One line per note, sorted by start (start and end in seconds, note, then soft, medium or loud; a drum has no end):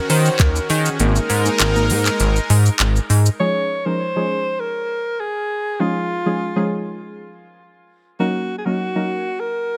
0.00 0.97 D#3 medium
0.00 0.11 F#3 medium
0.00 0.11 A#3 medium
0.00 0.97 C#4 medium
0.00 0.97 F#4 medium
0.00 0.11 G#4 medium
0.10 0.29 D#3 loud
0.10 0.42 C5 loud
0.10 open hi-hat medium
0.10 shaker medium
0.26 shaker medium
0.39 0.59 D#2 loud
0.39 0.71 A#4 loud
0.39 kick loud
0.39 clap loud
0.39 closed hi-hat medium
0.39 shaker medium
0.56 shaker medium
0.70 0.89 D#3 loud
0.70 0.99 G#4 medium
0.70 open hi-hat medium
0.70 shaker medium
0.86 shaker medium
1.00 1.19 G#1 loud
1.00 3.37 G#3 medium
1.00 1.28 A#3 medium
1.00 3.37 D#4 medium
1.00 1.28 D#4 medium
1.00 1.28 G#4 medium
1.00 3.37 A#4 medium
1.00 3.06 A#4 loud
1.00 closed hi-hat medium
1.00 shaker medium
1.16 shaker medium
1.30 1.49 G#2 loud
1.30 open hi-hat medium
1.30 shaker medium
1.45 1.64 A#3 medium
1.45 1.64 D#4 medium
1.45 1.64 G#4 medium
1.45 shaker medium
1.60 1.91 G#1 loud
1.60 clap loud
1.60 closed hi-hat medium
1.60 shaker loud
1.75 2.51 A#3 medium
1.75 2.51 D#4 medium
1.75 2.51 A#4 loud
1.75 shaker medium
1.90 2.09 G#2 loud
1.90 open hi-hat medium
1.90 shaker medium
2.06 clap medium
2.06 shaker medium
2.20 2.39 G#1 loud
2.20 closed hi-hat medium
2.20 shaker medium
2.36 shaker medium
2.50 2.69 G#2 loud
2.50 open hi-hat medium
2.50 shaker medium
2.66 shaker medium
2.80 2.99 G#1 loud
2.80 clap loud
2.80 closed hi-hat medium
2.80 shaker medium
2.96 shaker medium
3.10 3.29 G#2 loud
3.10 open hi-hat medium
3.10 shaker medium
3.26 shaker medium
3.40 3.68 F3 medium
3.40 3.68 G#3 medium
3.40 3.68 C#4 medium
3.40 3.68 D#4 medium
3.40 3.68 G#4 medium
3.40 3.87 C#5 loud
3.86 4.04 F3 medium
3.86 4.04 G#3 medium
3.86 4.04 C#4 medium
3.86 4.04 D#4 medium
3.86 4.04 A#4 medium
3.86 4.61 C5 loud
4.16 4.91 F3 medium
4.16 4.91 G#3 medium
4.16 4.91 C#4 medium
4.16 4.91 D#4 medium
4.16 4.91 G#4 medium
4.60 5.21 A#4 loud
5.20 5.82 G#4 loud
5.79 6.08 F3 medium
5.79 6.08 G#3 medium
5.79 6.08 C#4 medium
5.79 6.08 D#4 medium
5.79 7.00 F4 loud
5.79 6.08 G#4 medium
6.26 6.44 F3 medium
6.26 6.44 G#3 medium
6.26 6.44 C#4 medium
6.26 6.44 D#4 medium
6.26 6.44 G#4 medium
6.56 7.31 F3 medium
6.56 7.31 G#3 medium
6.56 7.31 C#4 medium
6.56 7.31 D#4 medium
6.56 7.31 G#4 loud
8.19 8.48 F#3 medium
8.19 8.48 A#3 medium
8.19 8.48 C#4 medium
8.19 8.48 D#4 medium
8.19 8.55 F#4 loud
8.19 8.48 A#4 medium
8.58 8.67 G#4 medium
8.65 8.84 F#3 medium
8.65 8.84 A#3 medium
8.65 8.84 C#4 medium
8.65 8.84 D#4 medium
8.65 9.42 F#4 loud
8.65 8.84 A#4 medium
8.95 9.71 F#3 medium
8.95 9.71 A#3 medium
8.95 9.71 C#4 medium
8.95 9.71 D#4 medium
8.95 9.71 A#4 medium
9.40 9.77 A#4 loud